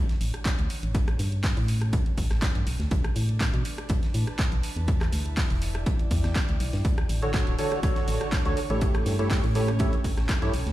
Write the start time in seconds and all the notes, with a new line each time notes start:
Already playing: D4 C#5 F#5
0.09 snare, closed hi-hat
0.21 A1, closed hi-hat, open hi-hat
0.34 cross-stick, closed hi-hat
0.45 kick, snare, clap, closed hi-hat
0.59 D2, closed hi-hat
0.70 closed hi-hat, open hi-hat
0.83 A1, closed hi-hat
0.95 C#4, kick, closed hi-hat
1.08 cross-stick, closed hi-hat
1.19 G2, snare, closed hi-hat, open hi-hat
1.32 closed hi-hat
1.38 A4
1.43 kick, snare, clap, closed hi-hat, open hi-hat
1.57 A2, closed hi-hat
1.68 G5, snare, closed hi-hat, open hi-hat
1.82 cross-stick, closed hi-hat
1.93 A1, kick, closed hi-hat
2.06 closed hi-hat
2.17 A1, kick, closed hi-hat, open hi-hat
2.30 A1, cross-stick, snare, closed hi-hat
2.42 kick, snare, clap, closed hi-hat
2.55 G2, closed hi-hat
2.67 B1 D4, closed hi-hat, open hi-hat
2.80 D2, snare, closed hi-hat
2.91 B1, kick, closed hi-hat
3.04 cross-stick, closed hi-hat
3.10 B4
3.16 A2, closed hi-hat, open hi-hat
3.29 closed hi-hat
3.40 kick, snare, clap, closed hi-hat
3.54 B2 A5, closed hi-hat
3.65 closed hi-hat, open hi-hat
3.78 cross-stick, closed hi-hat
3.89 B1, kick, closed hi-hat
4.03 snare, closed hi-hat
4.14 A2, closed hi-hat, open hi-hat
4.27 cross-stick, closed hi-hat
4.39 kick, snare, clap, closed hi-hat
4.52 B1, closed hi-hat
4.63 E4, closed hi-hat, open hi-hat
4.77 E2, closed hi-hat
4.88 kick, closed hi-hat
5.01 cross-stick, clap, closed hi-hat
5.12 D2, snare, closed hi-hat, open hi-hat
5.20 D5
5.37 kick, snare, clap, closed hi-hat, open hi-hat
5.50 E1, closed hi-hat
5.62 G5, snare, closed hi-hat, open hi-hat
5.75 cross-stick, closed hi-hat
5.86 E2, kick, closed hi-hat
5.99 closed hi-hat
6.11 E2, kick, closed hi-hat, open hi-hat
6.24 E2, cross-stick, snare, closed hi-hat
6.35 kick, snare, clap, closed hi-hat
6.49 D2, closed hi-hat
6.60 B1, closed hi-hat, open hi-hat
6.73 G2, snare, open hi-hat
6.85 D2 D4, kick, closed hi-hat
6.98 cross-stick, closed hi-hat
7.09 A1 F#5, closed hi-hat, open hi-hat
7.22 D3 D4 F#4 A4 C#5, closed hi-hat
7.30 C#5
7.34 D3 D4 F#4 A4 C#5, kick, snare, clap, closed hi-hat
7.47 D1, closed hi-hat
7.59 D3 D4 F#4 A4 C#5, closed hi-hat, open hi-hat
7.72 cross-stick, closed hi-hat
7.83 D2 D3 D4 F#4 A4 C#5, kick, closed hi-hat
7.96 snare, closed hi-hat
8.08 A1, closed hi-hat, open hi-hat
8.21 cross-stick, closed hi-hat
8.32 kick, snare, clap, closed hi-hat
8.45 D2 D3 D4 F#4 A4 C#5, closed hi-hat
8.57 closed hi-hat, open hi-hat
8.70 A1 A3 E4 G4 A4 C#5, closed hi-hat
8.81 C#4, kick, closed hi-hat
8.95 cross-stick, closed hi-hat
9.06 G2, snare, closed hi-hat, open hi-hat
9.19 A3 E4 G4 A4 C#5, closed hi-hat
9.30 A3 E4 G4 A4, kick, snare, clap, closed hi-hat, open hi-hat
9.44 A2, closed hi-hat
9.55 A3 E4 G4 A4 C#5 G5, snare, closed hi-hat, open hi-hat
9.68 cross-stick, closed hi-hat
9.79 A1 A3 E4 G4 A4 C#5, kick, closed hi-hat
9.93 closed hi-hat
10.04 A1, kick, closed hi-hat, open hi-hat
10.17 A1, cross-stick, snare, closed hi-hat
10.29 kick, snare, clap, closed hi-hat
10.42 G2 E4 G4 A4 C#5, closed hi-hat
10.53 B1 D4, closed hi-hat, open hi-hat
10.66 D2, snare, closed hi-hat